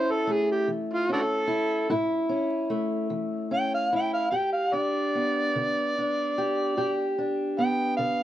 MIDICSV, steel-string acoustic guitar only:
0, 0, Header, 1, 2, 480
1, 0, Start_track
1, 0, Tempo, 807537
1, 2567, Time_signature, 12, 3, 24, 8
1, 4892, End_track
2, 0, Start_track
2, 0, Title_t, "Steel-string acoustic guitar"
2, 0, Program_c, 0, 25
2, 0, Note_on_c, 0, 45, 66
2, 0, Note_on_c, 0, 61, 57
2, 0, Note_on_c, 0, 64, 66
2, 113, Note_off_c, 0, 45, 0
2, 162, Note_on_c, 0, 57, 53
2, 403, Note_on_c, 0, 52, 55
2, 641, Note_off_c, 0, 61, 0
2, 648, Note_on_c, 0, 61, 53
2, 836, Note_off_c, 0, 52, 0
2, 870, Note_off_c, 0, 64, 0
2, 877, Note_on_c, 0, 64, 70
2, 1121, Note_off_c, 0, 64, 0
2, 1127, Note_on_c, 0, 45, 75
2, 1131, Note_on_c, 0, 64, 67
2, 1355, Note_off_c, 0, 61, 0
2, 1362, Note_on_c, 0, 61, 57
2, 1559, Note_off_c, 0, 45, 0
2, 1597, Note_off_c, 0, 57, 0
2, 1604, Note_on_c, 0, 57, 54
2, 1844, Note_on_c, 0, 52, 57
2, 2079, Note_off_c, 0, 61, 0
2, 2087, Note_on_c, 0, 61, 55
2, 2278, Note_off_c, 0, 52, 0
2, 2326, Note_off_c, 0, 64, 0
2, 2334, Note_on_c, 0, 64, 57
2, 2537, Note_off_c, 0, 57, 0
2, 2538, Note_off_c, 0, 61, 0
2, 2542, Note_off_c, 0, 64, 0
2, 2565, Note_on_c, 0, 43, 71
2, 2570, Note_on_c, 0, 67, 62
2, 2813, Note_on_c, 0, 62, 49
2, 2998, Note_off_c, 0, 43, 0
2, 3062, Note_on_c, 0, 59, 43
2, 3302, Note_on_c, 0, 50, 60
2, 3555, Note_off_c, 0, 62, 0
2, 3557, Note_on_c, 0, 62, 52
2, 3727, Note_off_c, 0, 50, 0
2, 3769, Note_off_c, 0, 67, 0
2, 3792, Note_on_c, 0, 67, 66
2, 4020, Note_off_c, 0, 67, 0
2, 4025, Note_on_c, 0, 43, 67
2, 4028, Note_on_c, 0, 67, 69
2, 4268, Note_off_c, 0, 62, 0
2, 4270, Note_on_c, 0, 62, 47
2, 4448, Note_off_c, 0, 43, 0
2, 4495, Note_off_c, 0, 59, 0
2, 4508, Note_on_c, 0, 59, 57
2, 4748, Note_on_c, 0, 50, 68
2, 4892, Note_off_c, 0, 50, 0
2, 4892, Note_off_c, 0, 59, 0
2, 4892, Note_off_c, 0, 62, 0
2, 4892, Note_off_c, 0, 67, 0
2, 4892, End_track
0, 0, End_of_file